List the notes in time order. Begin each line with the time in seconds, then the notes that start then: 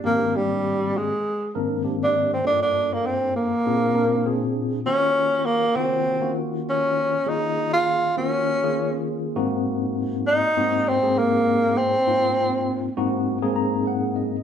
0.04 G#2 D#3 A#3 C4 D4 G4
0.36 G3
0.97 G#3
1.55 G#2 D#3 A#3 C4 D4 A#4
1.84 G#2 D#3 A#3 C4 D4 G4
2.04 D4
2.33 C4
2.44 G2 A#3 D4 F4 A4
2.62 D4
2.93 A#3
3.06 C4
3.36 A#3
3.66 A#2 C4 D4 F4 G#4
3.95 A#2 C4 D4 F4 A#4
4.26 A#2 C4 D4 F4 G#4
4.86 D#3 A#3 C#4 F4 F#4
5.45 A#3
5.76 C#3 D#3 A#3 C4 F4 F#4
6.21 D#3 A#3 C#4 F4 F#4
6.70 C#4
7.26 D#3 A#3 C#4 D#4 F4 G#4
7.73 F4
8.17 D#3 A#3 C#4 F4 F#4
8.63 D#3 A#3 C#4 F4 G#4
9.36 G#2 A#3 C4 D#4 F#4
10.27 D#4
10.57 G#2 A#3 C4 D#4 F#4
10.88 C4
11.03 G#2 A#3 C4 D#4 G#4
11.18 A#3
11.78 C4
12.07 G#2 A#3 C4 D#4 F4
12.97 G#2 A#3 C4 D#4 F#4
13.42 G#2 A#3 C4 D#4 G#4
13.56 A#5
13.87 F#5
14.16 D#5